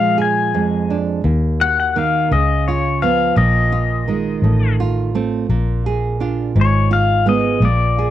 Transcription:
0.00 0.53 A#2 medium
0.00 1.20 F3 soft
0.00 0.53 G#3 soft
0.00 0.17 G#4 soft
0.00 0.17 F5 medium
0.18 1.20 G#4 soft
0.18 0.96 G#5 medium
0.54 1.21 F2 soft
0.54 1.25 G#3 soft
0.90 1.21 D4 soft
1.24 2.31 D#2 soft
1.24 2.29 D#2 medium
1.61 2.27 F#4 soft
1.61 1.78 F#5 medium
1.80 1.97 F#5 medium
1.96 2.31 D#3 soft
1.96 2.27 A#3 soft
1.96 2.30 F5 medium
2.31 3.36 C#2 medium
2.31 3.02 C#3 medium
2.31 2.68 D#5 medium
2.68 3.72 F4 soft
2.68 3.04 C#5 medium
3.02 4.07 F3 soft
3.02 3.34 B3 soft
3.02 3.37 F5 medium
3.36 4.41 A#1 medium
3.36 4.08 A#2 medium
3.36 4.75 D#5 medium
3.72 4.80 F4 soft
4.08 5.14 D#3 soft
4.08 4.44 G#3 soft
4.42 5.47 A1 soft
4.42 5.46 A2 medium
4.80 5.86 F4 medium
5.15 5.46 A3 soft
5.15 5.46 C4 soft
5.49 6.53 A#1 medium
5.49 6.56 A#2 medium
5.86 6.90 G#4 medium
6.20 6.51 D4 soft
6.20 6.91 F4 soft
6.55 7.59 G#1 medium
6.55 7.57 G#2 medium
6.61 6.95 C#5 medium
6.91 7.97 F4 soft
6.91 7.28 F5 medium
7.26 7.65 G#3 soft
7.26 7.58 B3 soft
7.26 7.64 D#5 medium
7.60 8.10 A#1 medium
7.60 8.10 A#2 medium
7.65 8.10 D5 medium
7.99 8.10 G#4 soft

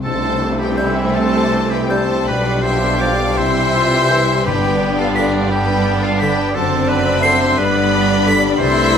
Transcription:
0.00 0.25 C4 soft
0.00 0.43 E4 soft
0.00 0.61 G4 medium
0.00 0.56 A5 loud
0.05 2.24 C2 medium
0.05 2.24 C3 medium
0.05 2.25 C3 medium
0.05 2.32 C3 medium
0.05 2.24 E3 medium
0.05 4.42 G3 medium
0.05 2.25 A3 medium
0.05 2.25 C4 medium
0.05 4.42 G4 medium
0.05 0.56 A4 loud
0.05 0.57 C5 medium
0.05 tam-tam medium
0.26 1.72 C4 medium
0.44 2.32 E4 medium
0.59 0.79 G4 medium
0.59 1.54 G4 medium
0.59 0.79 B4 medium
0.59 0.79 G5 medium
0.77 0.91 G3 medium
0.77 1.16 E4 medium
0.77 1.17 G4 medium
0.77 1.35 C5 medium
0.77 1.16 E5 loud
0.77 0.95 G6 medium
0.98 2.32 E5 medium
1.15 1.72 A4 loud
1.15 1.74 C5 loud
1.15 5.08 G5 medium
1.15 1.73 A5 loud
1.36 2.32 C5 medium
1.55 2.82 G4 medium
1.71 2.10 C4 medium
1.71 1.91 G4 medium
1.71 1.92 B4 medium
1.71 1.92 G5 medium
1.90 2.04 G3 medium
1.90 5.82 G3 medium
1.90 2.27 A4 medium
1.90 2.29 C5 loud
1.90 2.29 A5 loud
1.90 2.08 G6 medium
2.11 2.32 C4 medium
2.28 3.35 B1 medium
2.28 3.36 B2 medium
2.28 3.41 B2 medium
2.28 3.36 D3 medium
2.28 3.36 F3 medium
2.28 3.37 G3 medium
2.28 3.36 D4 medium
2.28 2.63 B4 loud
2.28 2.66 D5 medium
2.28 2.65 B5 medium
2.47 3.41 D4 medium
2.62 3.41 F4 medium
2.62 3.03 C5 loud
2.62 3.01 E5 medium
2.62 3.01 C6 loud
2.83 3.90 G4 medium
2.98 3.14 F3 medium
2.98 3.39 D5 loud
2.98 3.41 D5 medium
2.98 3.38 F5 medium
2.98 3.37 D6 loud
2.98 3.17 G6 medium
3.21 3.41 F5 medium
3.36 4.46 C2 medium
3.36 4.49 C3 medium
3.36 4.46 C3 medium
3.36 4.47 C3 medium
3.36 4.44 G3 medium
3.36 3.74 E4 medium
3.36 4.45 C5 loud
3.36 4.45 E5 loud
3.36 4.45 C6 loud
3.40 4.47 E3 medium
3.55 4.49 C4 medium
3.73 4.49 E4 medium
3.73 4.11 F4 medium
3.92 4.98 G4 medium
4.08 4.23 E3 medium
4.08 4.46 E4 medium
4.08 4.49 C5 medium
4.08 4.26 G6 medium
4.29 4.49 E5 medium
4.45 6.55 G1 medium
4.45 6.58 G2 medium
4.45 6.56 G2 medium
4.45 5.48 G2 loud
4.45 8.45 D3 medium
4.45 6.53 G3 medium
4.45 6.52 B3 medium
4.45 5.51 B3 medium
4.45 8.61 D4 medium
4.45 5.51 D4 medium
4.45 5.01 G4 loud
4.45 4.99 B4 loud
4.45 4.99 G5 loud
4.64 6.02 B3 medium
4.81 6.88 D4 medium
4.98 5.19 F4 medium
4.98 5.85 G4 medium
4.98 5.16 A4 medium
4.98 5.17 F5 loud
5.15 5.30 D3 medium
5.15 5.51 D4 medium
5.15 5.50 F4 medium
5.15 5.67 B4 medium
5.15 5.49 D5 loud
5.15 5.32 B6 medium
5.34 7.40 D5 medium
5.50 6.57 D4 medium
5.50 6.04 G4 medium
5.50 6.03 B4 loud
5.50 6.03 G5 loud
5.50 6.59 G5 medium
5.69 6.59 B4 medium
5.86 6.59 G4 medium
6.02 6.38 B3 medium
6.02 6.20 F4 medium
6.02 6.21 A4 medium
6.02 6.22 F5 loud
6.18 6.59 D3 medium
6.18 6.34 D3 medium
6.18 6.56 G4 medium
6.18 6.55 B4 medium
6.18 6.56 G5 loud
6.18 6.36 B6 medium
6.39 6.59 B3 medium
6.55 7.58 F#1 medium
6.55 7.61 F#2 loud
6.55 7.59 F#2 medium
6.55 7.56 F#3 medium
6.55 7.59 C4 medium
6.55 7.57 C4 medium
6.55 6.90 A4 loud
6.55 6.89 C5 medium
6.55 6.90 A5 loud
6.73 7.61 A3 medium
6.88 7.91 D4 medium
6.88 7.25 B4 medium
6.88 7.24 D5 loud
6.88 7.25 B5 loud
7.06 7.61 C5 medium
7.21 7.36 D3 medium
7.21 7.61 A4 medium
7.21 7.59 C5 loud
7.21 7.57 E5 loud
7.21 7.39 C7 loud
7.26 7.59 C6 loud
7.41 8.43 D5 medium
7.57 8.59 G1 loud
7.57 8.63 G2 medium
7.57 8.59 G2 medium
7.57 8.98 G3 medium
7.57 8.61 B3 medium
7.57 8.59 D4 medium
7.57 8.34 B4 loud
7.57 8.60 D5 loud
7.57 8.61 B5 loud
7.75 8.77 G3 medium
7.93 8.64 D4 medium
8.10 8.64 B4 medium
8.26 8.38 D3 loud
8.26 8.98 G4 medium
8.26 8.43 B6 loud
8.44 8.64 D5 medium
8.58 8.98 C2 loud
8.58 8.98 C3 loud
8.58 8.98 E3 loud
8.58 8.98 A3 loud
8.58 8.98 A3 medium
8.58 8.98 E4 loud
8.58 8.98 C5 loud
8.58 8.98 E5 loud
8.58 8.98 C6 loud
8.58 8.98 A6 medium
8.63 8.98 C3 medium
8.78 8.98 G3 medium

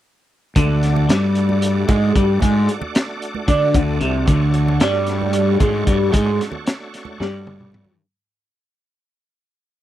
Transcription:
0.55 1.05 D2 medium
0.55 1.09 D3 loud
0.55 7.96 A3 medium
0.55 7.96 D4 medium
0.55 7.96 F#4 medium
0.55 4.24 D5 medium
0.55 kick loud
0.55 closed hi-hat medium
0.55 high conga medium
0.83 snare soft
0.83 closed hi-hat medium
0.96 low conga medium
1.09 1.85 G2 loud
1.09 1.88 G3 medium
1.09 snare loud
1.09 closed hi-hat loud
1.35 closed hi-hat medium
1.49 high conga medium
1.62 closed hi-hat loud
1.62 low conga soft
1.76 low conga soft
1.88 2.14 G#2 medium
1.88 2.15 G#3 medium
1.88 kick loud
1.88 closed hi-hat medium
1.88 low conga loud
2.03 low conga soft
2.16 2.40 G2 loud
2.16 2.41 G3 medium
2.16 kick loud
2.16 closed hi-hat medium
2.40 2.67 G#2 medium
2.40 2.68 G#3 loud
2.40 kick loud
2.40 closed hi-hat medium
2.40 high conga loud
2.55 low conga soft
2.69 closed hi-hat medium
2.81 low conga medium
2.95 snare loud
2.95 closed hi-hat loud
3.22 closed hi-hat medium
3.35 high conga medium
3.48 3.73 D3 medium
3.48 3.74 D4 loud
3.48 kick medium
3.48 closed hi-hat medium
3.48 low conga soft
3.62 low conga soft
3.74 3.99 D2 loud
3.74 4.00 D3 medium
3.74 kick loud
3.74 closed hi-hat medium
3.74 low conga medium
3.89 low conga soft
4.01 4.26 C2 loud
4.01 4.27 C3 medium
4.01 closed hi-hat medium
4.26 4.77 D2 medium
4.26 4.80 D3 loud
4.26 7.95 C#5 medium
4.26 kick medium
4.26 closed hi-hat medium
4.26 high conga medium
4.42 low conga soft
4.54 closed hi-hat medium
4.68 low conga medium
4.80 5.56 G2 loud
4.80 5.60 G3 loud
4.80 snare loud
4.80 closed hi-hat medium
5.07 snare soft
5.07 closed hi-hat medium
5.21 high conga medium
5.33 closed hi-hat medium
5.33 low conga soft
5.48 low conga soft
5.60 5.85 G#2 loud
5.60 5.86 G#3 medium
5.60 kick medium
5.60 closed hi-hat medium
5.60 low conga medium
5.73 low conga soft
5.87 6.12 G2 medium
5.87 6.12 G3 medium
5.87 kick loud
5.87 closed hi-hat medium
6.13 6.39 G#2 medium
6.13 6.39 G#3 loud
6.13 kick loud
6.13 closed hi-hat loud
6.13 high conga medium
6.13 low conga soft
6.26 low conga soft
6.41 snare soft
6.41 closed hi-hat medium
6.52 low conga medium
6.67 snare loud
6.67 closed hi-hat loud
6.94 snare soft
6.94 closed hi-hat medium
7.05 high conga medium
7.05 low conga soft
7.20 7.96 G2 medium
7.20 7.99 G3 loud
7.20 snare medium
7.32 low conga soft
7.46 high tom medium
7.46 high conga medium
7.59 mid tom medium
7.59 high conga medium
7.72 mid tom medium
7.72 low conga medium
7.85 low conga medium

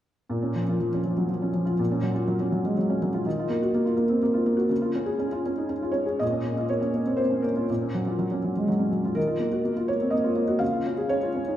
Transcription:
0.29 1.75 A#2 soft
0.43 0.63 C#4 soft
0.55 0.76 F3 soft
0.68 0.88 F4 soft
0.79 1.00 F3 soft
0.94 1.13 C#4 soft
1.05 1.25 F3 soft
1.17 1.30 F#3 soft
1.28 1.49 F3 soft
1.42 1.62 C#4 soft
1.53 1.74 F3 soft
1.65 1.79 F4 soft
1.79 3.21 A#2 soft
1.92 2.11 C#4 soft
2.03 2.23 F#3 soft
2.14 2.35 F4 soft
2.27 2.47 F#3 soft
2.40 2.60 C#4 soft
2.52 2.72 F#3 soft
2.65 2.77 G#3 soft
2.78 2.97 F#3 soft
2.90 3.09 C#4 soft
3.02 3.21 F#3 soft
3.14 3.26 F4 soft
3.25 4.67 D#3 soft
3.39 3.58 F4 soft
3.49 3.69 A#3 soft
3.62 3.81 F#4 soft
3.74 3.93 A#3 soft
3.85 4.05 F4 soft
3.97 4.17 A#3 soft
4.09 4.22 C4 soft
4.23 4.42 A#3 soft
4.34 4.54 F4 soft
4.46 4.66 A#3 soft
4.57 4.70 F#4 soft
4.69 6.16 C#3 soft
4.82 5.02 F4 soft
4.95 5.15 C#4 soft
5.06 5.27 G#4 soft
5.19 5.40 C#4 soft
5.32 5.53 F4 soft
5.46 5.66 C#4 soft
5.57 5.70 D#4 soft
5.69 5.90 C#4 soft
5.82 6.03 F4 soft
5.92 6.15 C#4 soft
5.92 6.19 C#5 medium
6.06 6.20 G#4 soft
6.19 7.65 A#2 soft
6.19 6.70 D#5 medium
6.32 6.52 C#4 soft
6.45 6.65 A#3 soft
6.58 6.78 F4 soft
6.69 6.90 A#3 soft
6.69 7.19 C#5 medium
6.81 7.02 C#4 soft
6.94 7.14 A#3 soft
7.06 7.19 C4 soft
7.17 7.39 A#3 soft
7.17 7.43 C5 soft
7.31 7.51 C#4 soft
7.42 7.64 A#3 soft
7.42 8.66 A#4 soft
7.56 7.69 F4 soft
7.70 9.12 A#2 soft
7.82 8.01 C#4 soft
7.94 8.14 F#3 soft
8.07 8.26 F4 soft
8.18 8.38 F#3 soft
8.31 8.51 C#4 soft
8.44 8.63 F#3 soft
8.57 8.68 G#3 soft
8.68 8.87 F#3 soft
8.79 8.99 C#4 soft
8.92 9.11 F#3 soft
9.05 9.17 F4 soft
9.15 10.57 D#3 soft
9.15 9.88 A#4 medium
9.27 9.47 F4 soft
9.39 9.59 A#3 soft
9.53 9.72 F#4 soft
9.65 9.84 A#3 soft
9.77 9.96 F4 soft
9.88 10.09 A#3 soft
9.88 10.12 C#5 medium
10.01 10.13 C4 soft
10.10 10.32 A#3 soft
10.10 10.60 D#5 medium
10.24 10.44 F4 soft
10.36 10.55 A#3 soft
10.48 10.60 F#4 soft
10.59 11.57 C#3 soft
10.59 11.08 F5 medium
10.73 10.92 F4 soft
10.87 11.05 C#4 soft
10.98 11.17 G#4 soft
11.09 11.29 C#4 soft
11.09 11.57 C#5 medium
11.23 11.41 F4 soft
11.36 11.54 C#4 soft
11.47 11.57 D#4 soft

